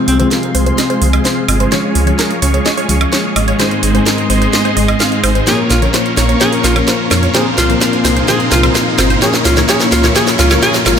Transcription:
Already playing: C3 F3 G#3 C4 F4 G#4 C5 F5 C6, riser
0.08 C2 C4, open hi-hat
0.18 C3 F3 G#3 C4 F4 G#4 C5, closed hi-hat
0.31 G#3 C4 F4 G#4 A#4, snare, closed hi-hat
0.43 closed hi-hat
0.55 C2 G#3 C4 F4 G#4 C5, open hi-hat
0.66 G#3 C4 F4 G#4 C5, closed hi-hat
0.78 G#3 C4 F4 G#4 D#5, snare, closed hi-hat
0.90 G#3 C4 F4 G#4 C5, closed hi-hat
1.00 C2 C3 F3 G#3 C4 G#4, open hi-hat
1.13 G#3 C4 F4 G#4 D#5, closed hi-hat, high woodblock
1.25 G#3 C4 F4 G#4 C5, snare, open hi-hat
1.48 G1 G#3 C4 F4 G#4 D#5, open hi-hat, high woodblock
1.60 G#3 C4 F4 G#4 C5, closed hi-hat
1.71 F3 G#3 C#4 F4 G#4 C#5 C#6, snare, closed hi-hat
1.95 C#2, open hi-hat
2.06 F3 G#3 C#4 F4 G#4 C#5, closed hi-hat
2.19 G#3 C#4 F4 G#4 A#4, snare, closed hi-hat
2.31 closed hi-hat
2.42 C#2 G#3 C#4 F4 G#4 C#5, open hi-hat
2.54 G#3 C#4 F4 G#4 C#5, closed hi-hat
2.66 G#3 C#4 F4 G#4 D#5, snare, closed hi-hat
2.77 G#3 C#4 F4 G#4 C#5, open hi-hat
2.88 C#2 F3 G#3 C#4 G#4, open hi-hat
3.01 G#3 C#4 F4 G#4 D#5, closed hi-hat, high woodblock
3.13 G#3 C#4 F4 G#4 C#5, snare, closed hi-hat
3.36 G#1 G#3 C#4 F4 G#4 D#5, open hi-hat, high woodblock
3.48 G#3 C#4 F4 G#4 C#5, closed hi-hat
3.59 G#2 D#3 G#3 C4 D#4 G#4 C5 D#5 C6, snare, closed hi-hat
3.71 closed hi-hat
3.83 G#1, open hi-hat
3.93 G#2 D#3 G#3 C4 D#4 G#4 C5, closed hi-hat
4.06 G#3 C4 D#4 G#4 A#4, snare, closed hi-hat
4.18 closed hi-hat
4.30 G#1 G#3 C4 D#4 G#4 C5, open hi-hat
4.42 G#3 C4 D#4 G#4 C5, closed hi-hat
4.53 G#3 C4 D#4 G#4 D#5, snare, closed hi-hat
4.65 G#3 C4 D#4 G#4 C5, closed hi-hat
4.75 G#1 G#2 D#3 G#3 C4 D#4 G#4 D#5, open hi-hat
4.88 G#3 C4 D#4 G#4 D#5, closed hi-hat, high woodblock
5.00 G#3 C4 D#4 G#4 F5, snare, open hi-hat
5.12 closed hi-hat
5.24 G#1 G#3 C4 D#4 G#4 C5, open hi-hat, high woodblock
5.35 G#3 C4 D#4 G#4 C5, closed hi-hat
5.46 A#2 F3 A#3 C#4 F4 G#4 A#4 C#5 F5 C#6, snare, closed hi-hat
5.70 A#1 F4, snare, open hi-hat
5.81 A#2 F3 A#3 C#4 F4 A#4 C#5, closed hi-hat
5.94 A#3 C#4 F4 A#4 C5, snare, closed hi-hat
6.06 closed hi-hat
6.17 A#1 A#3 C#4 F4 A#4 C#5, snare, open hi-hat
6.29 A#3 C#4 F4 A#4 C#5, closed hi-hat
6.40 A#2 F3 A#3 C#4 F4 G#4 A#4 C#5, snare, closed hi-hat
6.53 open hi-hat
6.64 A#1 F4, snare, open hi-hat
6.75 A#2 F3 A#3 C#4 F4 A#4 C#5, closed hi-hat, high woodblock
6.88 A#3 C#4 F4 A#4 C5, snare, closed hi-hat
7.11 F2 A#3 C#4 F4 A#4 C#5, snare, open hi-hat, high woodblock
7.23 A#3 C#4 F4 A#4 C#5, closed hi-hat
7.34 A#2 F3 A#3 C4 F4 G#4 A#4 C5 C6, snare, closed hi-hat
7.58 C2 F4, snare, open hi-hat
7.68 A#2 F3 A#3 C4 F4 A#4 C5, closed hi-hat
7.81 A#3 C4 F4 A#4 C5, snare, closed hi-hat
7.93 closed hi-hat
8.05 C2 A#3 C4 F4 A#4 C5, snare, open hi-hat
8.17 A#3 C4 F4 A#4 C5, closed hi-hat
8.28 A#2 F3 A#3 C4 F4 G#4 A#4 C5, snare, closed hi-hat
8.40 closed hi-hat
8.52 C2 F4, snare, open hi-hat
8.62 A#2 F3 A#3 C4 F4 A#4 C5, closed hi-hat, high woodblock
8.75 A#3 C4 F4 A#4 C5, snare, open hi-hat
8.99 G1 A#3 C4 F4 A#4 C5, snare, open hi-hat, high woodblock
9.10 A#3 C4 F4 A#4 C5, closed hi-hat
9.21 A#2 F3 A#3 C#4 F4 G#4 A#4 C#5 C#6, snare, closed hi-hat
9.34 snare
9.45 C#2 F4, snare, open hi-hat
9.56 A#2 F3 A#3 C#4 F4 A#4 C#5, snare, closed hi-hat
9.68 A#2 F3 A#3 C#4 F4 G#4 A#4 C#5, snare, closed hi-hat
9.80 snare, closed hi-hat
9.92 C#2 F4, snare, open hi-hat
10.03 A#2 F3 A#3 C#4 F4 A#4 C#5, snare, closed hi-hat
10.15 A#2 F3 A#3 C#4 F4 G#4 A#4 C#5, snare, closed hi-hat
10.27 snare, open hi-hat
10.39 C#2 F4, snare, open hi-hat
10.50 A#2 F3 A#3 C#4 F4 A#4 C#5, snare, closed hi-hat, high woodblock
10.62 A#2 F3 A#3 C#4 F4 G#4 A#4 C#5, snare, closed hi-hat
10.74 snare
10.86 G#1 F4, snare, open hi-hat, high woodblock

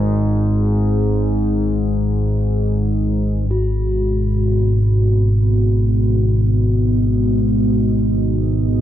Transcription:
Already playing: G#1 G#2 G#4
3.49 G#1 G#2 B3 F#4
4.57 D#4
5.43 G#4
5.73 D#5

